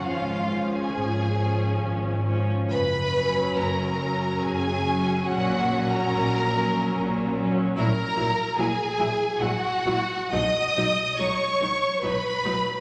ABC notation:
X:1
M:3/4
L:1/16
Q:1/4=71
K:F#
V:1 name="Violin section"
e3 g6- g z2 | b4 a4 g4 | f3 a6- a z2 | [K:B] a4 g4 f4 |
d'4 c'4 b4 |]
V:2 name="Violin section"
E3 G6- G z2 | B4 A4 G4 | F3 A6- A z2 | [K:B] A4 G4 F4 |
d4 c4 B4 |]
V:3 name="Viola section"
[E,C]2 [E,C]4 [E,C]4 [E,C]2 | z2 [F,C]4 [F,C]4 [F,C]2 | [F,C]2 [F,C]4 [F,C]4 [F,C]2 | [K:B] [F,E]2 [F,E]2 [F,E]2 [F,E]2 [F,E]2 [F,E]2 |
[F,D]2 [F,D]2 [F,D]2 [F,D]2 [F,D]2 [F,D]2 |]
V:4 name="Cello section" clef=bass
G,,4 G,,4 G,,4 | F,,4 F,,4 F,,4 | A,,4 A,,4 A,,4 | [K:B] A,,2 A,,2 A,,2 A,,2 A,,2 A,,2 |
B,,2 B,,2 B,,2 B,,2 B,,2 B,,2 |]
V:5 name="Double bass section" clef=bass
G,,,4 G,,,4 G,,,4 | F,,,4 F,,,4 F,,,4 | A,,,4 A,,,4 A,,,4 | [K:B] A,,,2 A,,,2 A,,,2 A,,,2 A,,,2 A,,,2 |
B,,,2 B,,,2 B,,,2 B,,,2 B,,,2 B,,,2 |]